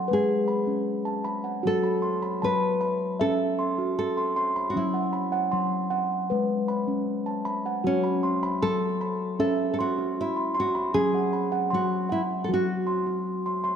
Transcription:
Already playing: A4
0.08 G#3 B4
0.13 G#4
0.48 B5
0.67 C#4
1.05 A5
1.25 B5
1.44 F#5
1.63 F#3 F#4 A4
1.83 B5
2.02 C6
2.22 B5
2.42 F#3 B4 A5
2.81 B5
3.19 C#4 A4 E5
3.59 C6
3.78 F#4
3.99 A4
4.17 C6
4.36 C6
4.56 B5
4.70 C#4 F#4
4.76 F#3 E4
4.94 F#5
5.13 B5
5.32 F#5
5.52 F#3 C6
5.90 F#5
6.30 G#3 B4
6.68 B5
6.87 C#4
7.26 A5
7.45 B5
7.66 F#5
7.84 F#3 C#4 F#4
8.04 B5
8.23 C6
8.43 B5
8.62 F#3 A4 C6
9.01 B5
9.39 C#4 A4 E5
9.74 A4
9.79 F#4 C6
9.98 F#4
10.21 E4
10.37 C6
10.55 C6
10.60 F#4
10.75 B5
10.94 F#3 C#4 G#4
11.15 F#5
11.33 B5
11.52 F#5
11.70 F#3 C6
11.74 F#4
12.09 E4 F#5
12.44 A4
12.48 F#3 F#4
12.54 F#4
12.87 C6
13.06 F#4
13.46 C6
13.64 C6

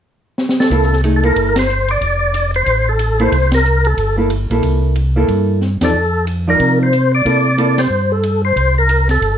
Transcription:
0.38 snare
0.49 snare
0.60 A4, snare
0.70 C2 A#3 E4 A4, kick, ride
0.82 snare
0.93 snare
1.04 A3 D#4 G#4, hi-hat pedal, ride
1.16 A4
1.23 A#3 E4 A4 A#4, ride
1.36 G1, kick, ride
1.56 C5, snare, ride
1.69 hi-hat pedal
1.88 D5, ride
2.01 F1, kick, ride
2.34 hi-hat pedal, ride
2.54 C5, ride
2.66 A1, kick, ride
2.89 A4
2.99 hi-hat pedal, ride
3.19 A#3 E4 A4 C5, ride
3.32 C2, kick, ride
3.52 A#4, snare, ride
3.65 hi-hat pedal
3.85 A4, ride
3.97 G1, kick, ride
4.18 A#3 E4 A4
4.30 hi-hat pedal, ride
4.50 A#1 A#3 E4 A4, ride
4.63 C2, kick, ride
4.96 hi-hat pedal, ride
5.16 A#3 E4 A4
5.28 G2, kick, ride
5.61 snare, hi-hat pedal
5.81 E2 F3 D#4 A4 D5, snare, ride
5.93 F2
6.27 hi-hat pedal, ride
6.47 F3 D#4 A#4 D5
6.60 C3, kick, ride
6.83 C5
6.93 hi-hat pedal, ride
7.15 D5
7.25 C3 A#3 E4 A4, kick, ride
7.58 A#3 E4 A4, hi-hat pedal, ride
7.78 C5, snare, ride
7.90 G2
8.12 A4
8.23 hi-hat pedal, ride
8.45 C5
8.56 C2, kick, ride
8.78 A#4
8.89 hi-hat pedal, ride
9.09 A4, snare, ride
9.21 G1, kick, ride

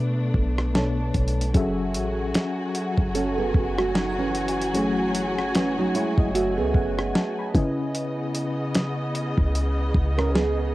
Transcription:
Already playing: B2 A3 B3 D4 A4 B4, downlifter
0.34 B1, kick
0.58 cross-stick
0.75 B2 B3 D4 A4 C#5 A5, snare
1.14 B1, kick, closed hi-hat
1.28 closed hi-hat
1.41 closed hi-hat
1.54 F#1 F#3 C#4 F#4 G#4 A4 E5 G#5, kick, closed hi-hat
1.94 A1, closed hi-hat
2.35 snare, closed hi-hat
2.75 closed hi-hat
2.98 F#1, kick
3.15 C#4 A4, closed hi-hat
3.38 B3 G#4
3.54 F#1, kick
3.78 A3 F#4, cross-stick
3.95 F#3 D#4, snare
4.18 E3 C#4
4.35 closed hi-hat
4.48 closed hi-hat
4.61 closed hi-hat
4.74 F#3 A3 C#4 G#4 C#5, closed hi-hat
5.15 closed hi-hat
5.39 cross-stick
5.55 E3 C#4, snare, closed hi-hat
5.78 F#3 D#4
5.95 G#3 E4 C#5, closed hi-hat
6.18 F#1 D#5, kick
6.35 A3 F#4 E5, closed hi-hat
6.58 C#2 B3 G#4
6.74 F#1 F#5, kick
6.99 cross-stick
7.15 A5, snare
7.39 B5
7.54 C#3 B3 C#4 E4 B4 D#5 G#5, kick, closed hi-hat
7.95 closed hi-hat
8.35 closed hi-hat
8.75 snare, closed hi-hat
9.15 closed hi-hat
9.38 C#2, kick
9.55 closed hi-hat
9.94 C#2, kick
10.18 C#4 A#4, cross-stick
10.35 B3 G#4, snare

